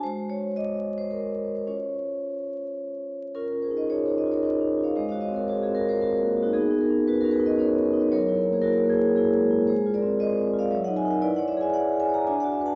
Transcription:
\new Staff \with { instrumentName = "Vibraphone" } { \time 3/4 \key aes \major \tempo 4 = 114 << { c''8 des''8 ees''8. c''16 bes'8. c''16 | des''2~ des''8 r8 | <f' bes'>8 <aes' c''>16 <c'' ees''>16 <aes' des''>16 <aes' c''>16 <c'' ees''>16 <bes' des''>16 <c'' ees''>8. <des'' f''>16 | <c'' ees''>16 <des'' f''>16 <c'' ees''>16 <bes' des''>16 <aes' c''>16 <f' aes'>16 <ges' bes'>16 <aes' c''>16 <ges' bes'>8. <ees' ges'>16 |
<ees' aes'>8 <ges' bes'>8 <ges' ces''>16 <ges' bes'>16 <aes' ces''>16 <ces'' ees''>16 <bes' des''>8. <ces'' ees''>16 | <bes' des''>8. <aes' c''>16 <ges' bes'>8 <fes' aes'>8 <fes' aes'>4 | <aes' c''>8 <bes' d''>8 <c'' ees''>8. <d'' f''>16 <des'' fes''>16 <ees'' ges''>16 <fes'' aes''>16 <ees'' ges''>16 | <b' d''>16 <d'' fis''>16 <cis'' e''>16 <e'' gis''>16 <d'' fis''>8 <e'' gis''>16 <fis'' bes''>16 <e'' aes''>16 <d'' fis''>16 <e'' aes''>16 <fis'' a''>16 | } \\ { <aes ges'>2. | <des' f' c''>2. | \tuplet 3/2 { des'8 f'8 ees'8 f'8 ees'8 f'8 ees'8 des'8 f'8 } | \tuplet 3/2 { aes8 ges'8 c'8 ges'8 c'8 ges'8 c'8 bes8 ges'8 } |
\tuplet 3/2 { ces'8 ees'8 des'8 ees'8 des'8 ees'8 des'8 ces'8 ees'8 } | \tuplet 3/2 { ges8 fes'8 bes8 fes'8 bes8 fes'8 bes8 aes8 fes'8 } | \tuplet 3/2 { aes8 f'8 c'8 f'8 c'8 f'8 ges8 ees'8 <ees' bes'>8 } | \tuplet 3/2 { e'8 cis''8 gis'8 cis''8 gis'8 cis''8 d'8 fis'8 <fis' b'>8 } | } >> }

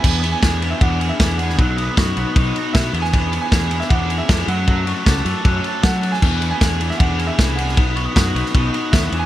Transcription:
<<
  \new Staff \with { instrumentName = "Glockenspiel" } { \time 4/4 \key e \mixolydian \tempo 4 = 155 r1 | r8 dis'''8 cis'''4 b''8. r4 r16 | r1 | r8 cis'''8 d'''8 e'''8 fis'''8. r4 r16 |
r1 | r8 cis'''16 dis'''8. cis'''8. dis'''8 r4 r16 | }
  \new Staff \with { instrumentName = "Upright piano" } { \time 4/4 \key e \mixolydian gis''8. gis''4 e''16 fis''8. e''8. fis''8~ | fis''4. r4. e''8. gis''16~ | gis''8. gis''4 e''16 fis''8. e''8. fis''8~ | fis''4. r4. fis''8. gis''16~ |
gis''8. gis''4 e''16 fis''8. e''8. fis''8~ | fis''4. r4. e''8. gis''16 | }
  \new Staff \with { instrumentName = "Clean electric guitar" } { \time 4/4 \key e \mixolydian <e b d' gis'>8 <b d' gis'>8 <e b d' gis'>8 <b d' gis'>4. <e b d' gis'>8 <b d' gis'>8 | <b, fis b dis' fis'>8 <b dis' fis'>8 <fis b dis' fis'>8 <b dis' fis'>4. <b, fis b dis' fis'>8 <e b d' gis'>8 | <e b d' gis'>8 <b d' gis'>8 <e b d' gis'>8 <b d' gis'>4. <e b d' gis'>8 <fis a cis' fis'>8 | <fis a cis' fis'>8 <a cis' fis'>8 <fis a cis' fis'>8 <a cis' fis'>4. <fis a cis' fis'>8 <a cis' fis'>8 |
<e b d' gis'>8 <b d' gis'>8 <e b d' gis'>8 <b d' gis'>4. <e b d' gis'>8 <b d' gis'>8 | <b, fis b dis' fis'>8 <b dis' fis'>8 <fis b dis' fis'>8 <b dis' fis'>4. <b, fis b dis' fis'>8 <e b d' gis'>8 | }
  \new Staff \with { instrumentName = "Overdriven electric guitar" } { \time 4/4 \key e \mixolydian b8 b8 gis'8 b8 d'8 gis'8 b8 gis'8 | fis8 b8 fis'8 b8 dis'8 fis'8 b8 b8 | b8 b8 gis'8 b8 d'8 gis'8 b8 fis8 | fis8 a8 a'8 a8 cis'8 a'8 a8 a'8 |
e8 b8 gis'8 b8 d'8 gis'8 b8 gis'8 | b8 b8 fis'8 b8 dis'8 fis'8 b8 e8 | }
  \new Staff \with { instrumentName = "Fingered electric bass" } { \clef bass \time 4/4 \key e \mixolydian e,4 e,4 e,4 e,4 | b,,4 fis,8 b,,16 r16 b,,8 r8 b,8 e,8~ | e,4 e,4 e,4 eis,8 fis,8~ | fis,4 cis,8 fis,16 r16 fis,8 r8 fis4 |
e,4 e,4 e,4 bis,,4 | b,,4 fis,8 b,,16 r16 b,,8 r8 dis,8 e,8 | }
  \new DrumStaff \with { instrumentName = "Drums" } \drummode { \time 4/4 <cymc bd>8 cymr8 <bd cymr sn>8 cymr8 <bd cymr>8 cymr8 <bd cymr sn>8 cymr16 sn16 | <bd cymr>8 cymr8 <bd cymr sn>8 cymr8 <bd cymr>8 cymr8 <bd cymr sn>8 cymr16 sn16 | <bd cymr>8 cymr8 <bd cymr sn>8 cymr16 sn16 <bd cymr>8 cymr8 <bd cymr sn>8 cymr8 | <bd cymr>8 cymr8 <bd cymr sn>8 cymr8 <bd cymr>8 cymr8 <bd cymr sn>8 cymr16 sn16 |
<cymc bd>8 cymr8 <bd cymr sn>8 cymr16 sn16 <bd cymr>8 cymr8 <bd cymr sn>8 cymr16 sn16 | <bd cymr>8 cymr8 <bd cymr sn>8 cymr16 sn16 <bd cymr>8 cymr8 <bd cymr sn>8 cymr8 | }
>>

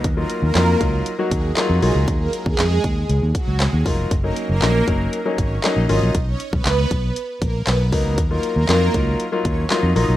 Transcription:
<<
  \new Staff \with { instrumentName = "Grand piano" } { \time 4/4 \key dis \minor \tempo 4 = 118 r16 <fis ais dis' eis'>8 r16 <fis ais dis' eis'>8 <fis ais dis' eis'>8 r16 <fis ais dis' fis'>8 r16 <fis ais dis' eis'>8 <fis ais dis' eis'>8~ | <fis ais dis' eis'>4 r2 r8 <fis ais dis' eis'>8 | r16 <fis ais cis' dis'>8 r16 <fis ais cis' dis'>8 <fis ais cis' dis'>8 r16 <fis ais cis' dis'>8 r16 <fis ais cis' dis'>8 <fis ais cis' eis'>8 | r2. r8 <fis ais b dis'>8 |
r16 <fis ais dis' eis'>8 r16 <fis ais dis' eis'>8 <fis ais dis' eis'>8 r16 <fis ais dis' eis'>8 r16 <fis ais dis' eis'>8 <fis ais dis' eis'>8 | }
  \new Staff \with { instrumentName = "Fingered electric bass" } { \clef bass \time 4/4 \key dis \minor dis,8 r16 dis,16 eis,8 cis,8 r8 dis,8 r16 eis,16 b,,16 cis,16 | dis,8 r16 dis,16 eis,8 dis,8 cis,16 dis,16 r16 cis,8 dis,16 eis,,8 | fis,,8 r16 fis,,16 ais,,8 fis,,8 r8 gis,,8 r16 ais,,16 gis,,16 ais,,16 | b,,8 r16 b,,16 cis,8 b,,8 r8 ais,,8 b,,8 cis,8 |
dis,8 r16 dis,16 eis,8 cis,8 r8 dis,8 r16 eis,16 ais,,16 b,,16 | }
  \new DrumStaff \with { instrumentName = "Drums" } \drummode { \time 4/4 <hh bd>8 hh8 <hc hh sn>8 <hh bd>8 hh8 <hh bd>8 <hc hh sn>8 hho8 | <hh bd>8 hh16 bd16 <hc hh sn>8 <hh bd>8 hh8 <hh bd>8 <hc hh sn>8 <hho bd>8 | <hh bd>8 hh8 <hc hh sn>8 <hh bd>8 hh8 <hh bd>8 <hc hh sn>8 hho8 | <hh bd>8 hh16 bd16 <hc hh sn>8 <hh bd>8 hh8 <hh bd>8 <hc hh sn>8 <hho bd>8 |
<hh bd>8 hh8 <hc hh sn>8 <hh bd>8 hh8 <hh bd>8 <hc hh sn>8 hho8 | }
>>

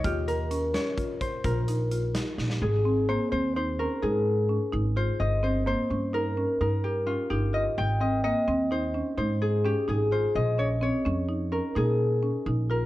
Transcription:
<<
  \new Staff \with { instrumentName = "Harp" } { \time 11/8 \key aes \major \tempo 4 = 128 g'8 bes'4 des''4 c''8 bes'4. r4 | aes'4 c''8 c''8 c''8 bes'8 aes'2 c''8 | ees''8 c''8 c''4 bes'4 bes'8 g'8 f'8 g'8 ees''8 | g''8 ees''8 ees''4 c''4 c''8 aes'8 g'8 aes'8 c''8 |
ees''8 des''8 des''4. bes'8 aes'2 bes'8 | }
  \new Staff \with { instrumentName = "Marimba" } { \time 11/8 \key aes \major f'4 des'8 des'8 f'4 f'8 ees'8 f'8 ees'8 ees'8 | r8 c'8 bes8 c'8 ees'8 des'8 ees'4 des'8 ees'8 f'8 | r8 c'8 bes8 des'8 ees'8 des'8 ees'4 des'8 ees'8 f'8 | r8 c'8 bes8 c'8 ees'8 des'8 ees'4 des'8 ees'8 f'8 |
r8 des'8 c'8 des'8 ees'8 des'8 ees'4 des'8 ees'8 f'8 | }
  \new Staff \with { instrumentName = "Upright bass" } { \clef bass \time 11/8 \key aes \major ees,2 r4 bes,,2 bes,,8 | aes,,4. ees,4. aes,4. aes,,4 | g,,4. g,4. g,4. g,,4 | aes,,4. ees,4. aes,4. aes,,4 |
bes,,4. f,4. bes,4. bes,,4 | }
  \new DrumStaff \with { instrumentName = "Drums" } \drummode { \time 11/8 <hh bd>8 hh8 hh8 <hh sn>8 <hh bd>8 <hh bd>8 <hh bd>8 hh8 hh8 <hh sn>8 sn16 sn16 | r4. r4. r4. r4 | r4. r4. r4. r4 | r4. r4. r4. r4 |
r4. r4. r4. r4 | }
>>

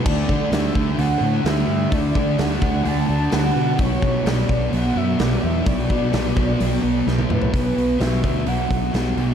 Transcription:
<<
  \new Staff \with { instrumentName = "Soft synth lead" } { \time 4/4 \key b \minor \tempo 4 = 128 d''4 e''4 fis''8 fis''8 e''4 | d''4 fis''4 a''8 a''8 fis''4 | cis''4 d''4 fis''8 e''8 d''8 e''8 | d''2. r8 b'8 |
b'4 e''4 fis''4. r8 | }
  \new Staff \with { instrumentName = "Distorted electric guitar" } { \time 4/4 \key b \minor <d a d'>8 <a d'>8 <d a d'>8 <a d'>8 <d a d'>8 <a d'>8 <d a d'>4 | <d a d'>8 <a d'>8 <d a d'>8 <a d'>8 <d a d'>8 <a d'>8 <d a d'>4 | <b, fis b>8 <fis b>8 <b, fis b>8 <fis b>8 <b, fis b>8 <fis b>8 <b, fis b>4 | <b, fis b>8 <fis b>8 <b, fis b>8 <fis b>8 <b, fis b>8 <fis b>8 <b, fis b>4 |
<b, fis b>8 <fis b>8 <b, fis b>8 <fis b>8 <b, fis b>8 <fis b>8 <b, fis b>8 <fis b>8 | }
  \new Staff \with { instrumentName = "Fingered electric bass" } { \clef bass \time 4/4 \key b \minor d,8 d8 d,8 d,8 d,8 a,8 d,8 g,8 | d,8 d8 d,8 d,8 d,8 d,8 d,8 b,8 | b,,8 b,8 b,,8 b,,8 b,,8 fis,8 b,,8 e,8 | b,,8 b,8 b,,8 b,,8 b,,8 b,,8 b,,8 a,8 |
b,,8 b,,8 b,,8 d,8 b,,8 b,,8 b,,8 b,,8 | }
  \new DrumStaff \with { instrumentName = "Drums" } \drummode { \time 4/4 <cymc bd>8 bd8 <hho sn>8 bd8 hho4 <hho sn>4 | <hho bd>8 bd8 <hho sn>8 bd8 hho4 <hho sn>4 | <hho bd>8 bd8 <hho sn>8 bd8 hho4 <hho sn>4 | <hho bd>8 bd8 <hho sn>8 bd8 hho4 sn16 tommh16 toml16 tomfh16 |
<hho bd>8 hho8 <hho sn>8 <hho bd>8 hho8 <hho bd>8 <hho sn>8 hho8 | }
>>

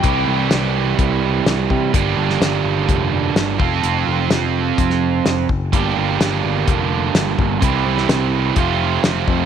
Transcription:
<<
  \new Staff \with { instrumentName = "Electric slide guitar" } { \time 4/4 \key g \dorian \tempo 4 = 127 g''4. r2 r8 | r1 | r1 | r1 |
r1 | }
  \new Staff \with { instrumentName = "Overdriven electric guitar" } { \clef bass \time 4/4 \key g \dorian <c e g e' g'>1 | <g, d g bes d' g'>2.~ <g, d g bes d' g'>8 <f c' f' a'>8~ | <f c' f' a'>2.~ <f c' f' a'>8 r8 | <g, d g bes d' g'>1 |
<c e g c' e'>2 <f, c f a c' f'>2 | }
  \new Staff \with { instrumentName = "Picked electric bass" } { \clef bass \time 4/4 \key g \dorian c,8 c,8 c,4 c,4 c,8 c8 | g,,8 g,,8 g,,8 g,,8 f,,4 g,,8 f,,8 | f,,8 f,,8 f,,4 f,,4 f,,8 fis,,8 | g,,8 g,,8 g,,8 g,,8 f,,4 g,,8 g,,8 |
c,8 c,8 c,4 f,,4 f,,8 f,8 | }
  \new DrumStaff \with { instrumentName = "Drums" } \drummode { \time 4/4 <hh bd>4 <hh sn>4 <hh bd>4 <hh sn>8 bd8 | <hh bd>8. sn16 <hh sn>4 <hh bd>4 <hh sn>8 bd8 | hh4 <hh sn>4 <hh bd>16 sn8. <hh sn>8 bd8 | <hh bd>4 <hh sn>4 <hh bd>4 <hh sn>8 bd8 |
<hh bd>8. sn16 <hh sn>4 <hh bd>4 <hh sn>8 bd8 | }
>>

